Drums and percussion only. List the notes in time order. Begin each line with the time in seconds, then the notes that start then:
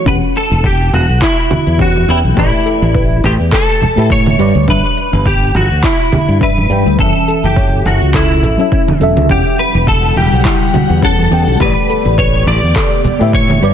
0.06 kick, high conga, shaker
0.23 shaker
0.36 shaker
0.52 high conga, shaker
0.64 kick, shaker
0.81 shaker
0.93 high conga, shaker
1.09 shaker
1.22 kick, clap, shaker
1.38 shaker
1.51 high conga, low conga, shaker
1.67 shaker
1.79 kick, shaker
1.96 high conga, shaker
2.08 shaker
2.24 shaker
2.37 kick, high conga, shaker
2.53 shaker
2.66 shaker
2.82 high conga, shaker
2.95 kick, shaker
3.11 shaker
3.24 high conga, shaker
3.40 shaker
3.52 kick, clap, shaker
3.69 shaker
3.81 high conga, low conga, shaker
3.98 shaker
4.10 kick, shaker
4.26 high conga, low conga, shaker
4.39 shaker
4.55 low conga, shaker
4.68 kick, high conga, shaker
4.84 shaker
4.97 shaker
5.13 high conga, shaker
5.26 kick, shaker
5.42 shaker
5.55 high conga, shaker
5.71 shaker
5.83 kick, clap, shaker
6.00 shaker
6.12 high conga, low conga, shaker
6.29 shaker
6.41 kick, shaker
6.58 high conga, shaker
6.71 shaker
6.86 shaker
6.98 kick, high conga, shaker
7.16 shaker
7.28 shaker
7.44 high conga, shaker
7.56 kick, shaker
7.73 shaker
7.86 high conga, shaker
8.02 shaker
8.14 kick, clap, shaker
8.31 shaker
8.43 high conga, low conga, shaker
8.60 shaker
8.72 kick, shaker
8.88 high conga, low conga, shaker
9.01 shaker
9.17 low conga, shaker
9.29 kick, high conga, shaker
9.46 shaker
9.59 shaker
9.75 high conga, shaker
9.87 kick, shaker
10.04 shaker
10.17 high conga, shaker
10.32 shaker
10.45 kick, clap, shaker
10.61 shaker
10.74 high conga, low conga, shaker
10.90 shaker
11.02 kick, shaker
11.19 high conga, shaker
11.32 shaker
11.48 shaker
11.60 kick, high conga, shaker
11.77 shaker
11.90 shaker
12.05 high conga, shaker
12.18 kick, shaker
12.34 shaker
12.46 high conga, shaker
12.63 shaker
12.76 kick, clap, shaker
12.92 shaker
13.05 high conga, low conga, shaker
13.21 shaker
13.33 kick, shaker
13.49 high conga, low conga, shaker
13.63 shaker